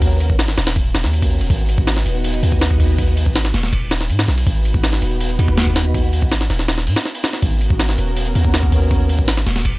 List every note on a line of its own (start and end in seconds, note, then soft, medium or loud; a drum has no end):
0.00 0.31 D#2 medium
0.00 kick loud
0.00 ride medium
0.20 ride medium
0.30 0.56 G#1 loud
0.30 kick loud
0.39 snare loud
0.39 ride medium
0.48 snare soft
0.58 0.93 D#1 medium
0.58 snare loud
0.58 ride medium
0.67 snare loud
0.67 ride medium
0.76 kick loud
0.76 ride medium
0.94 1.05 D#1 medium
0.94 snare loud
0.94 ride medium
1.04 1.42 D#2 medium
1.04 snare soft
1.13 ride medium
1.22 kick loud
1.22 ride medium
1.41 1.49 D#1 medium
1.41 ride medium
1.50 1.76 G#1 loud
1.50 2.78 B3 loud
1.50 2.78 D#4 medium
1.50 2.78 F#4 medium
1.50 2.78 B4 loud
1.50 kick loud
1.50 ride medium
1.69 ride medium
1.78 2.04 G#1 loud
1.78 kick loud
1.87 snare loud
1.87 ride medium
1.97 snare medium
2.06 2.41 D#1 medium
2.06 ride medium
2.24 ride medium
2.34 ride soft
2.43 3.28 D#2 medium
2.43 ride medium
2.52 kick loud
2.61 snare loud
2.61 ride medium
2.71 kick loud
2.80 kick loud
2.80 ride medium
2.99 kick loud
2.99 ride medium
3.17 ride medium
3.26 3.52 G#1 loud
3.26 kick loud
3.36 snare loud
3.36 ride medium
3.45 snare soft
3.54 4.11 D#1 medium
3.54 snare soft
3.54 ride medium
3.63 snare soft
3.73 kick loud
3.73 ride medium
3.91 snare loud
3.91 ride medium
4.01 snare soft
4.10 4.26 G#2 medium
4.10 ride medium
4.19 snare loud
4.19 ride medium
4.28 4.45 B1 medium
4.28 snare soft
4.38 ride medium
4.46 4.73 G#1 loud
4.46 5.74 B3 loud
4.46 5.74 D#4 medium
4.46 5.74 F#4 medium
4.46 5.74 B4 loud
4.46 kick loud
4.46 ride medium
4.65 ride medium
4.74 5.01 G#1 loud
4.74 kick loud
4.84 snare loud
4.84 ride medium
4.93 snare medium
5.02 5.38 D#1 medium
5.02 ride medium
5.21 ride medium
5.30 ride soft
5.39 6.24 D#2 loud
5.39 ride medium
5.48 kick loud
5.58 snare loud
5.58 ride medium
5.67 kick loud
5.76 snare loud
5.76 ride medium
5.94 kick loud
5.94 ride medium
6.13 ride medium
6.22 6.49 G#1 loud
6.22 kick loud
6.32 snare loud
6.32 ride medium
6.41 snare soft
6.50 6.89 D#1 medium
6.50 snare soft
6.50 ride medium
6.59 snare soft
6.68 snare loud
6.68 ride medium
6.78 snare soft
6.87 6.96 G#2 medium
6.87 ride medium
6.96 snare loud
6.96 ride medium
7.05 snare soft
7.15 ride medium
7.24 snare loud
7.24 ride medium
7.33 snare soft
7.42 7.69 G#1 loud
7.42 8.70 B3 loud
7.42 8.70 C#4 medium
7.42 8.70 F#4 medium
7.42 8.70 A#4 loud
7.42 kick loud
7.42 ride medium
7.61 ride medium
7.70 7.97 G#1 loud
7.70 kick loud
7.79 snare loud
7.79 ride medium
7.89 snare soft
7.98 8.34 D#1 medium
7.98 ride medium
8.17 ride medium
8.26 ride soft
8.35 9.20 D#2 medium
8.35 ride medium
8.45 kick loud
8.54 snare loud
8.54 ride medium
8.63 kick loud
8.72 kick loud
8.72 ride medium
8.91 kick loud
8.91 ride medium
9.09 ride medium
9.19 9.45 G#1 loud
9.19 kick loud
9.28 snare loud
9.28 ride medium
9.37 snare soft
9.46 9.79 D#1 medium
9.46 snare soft
9.46 ride medium
9.56 snare soft
9.65 kick loud
9.65 ride medium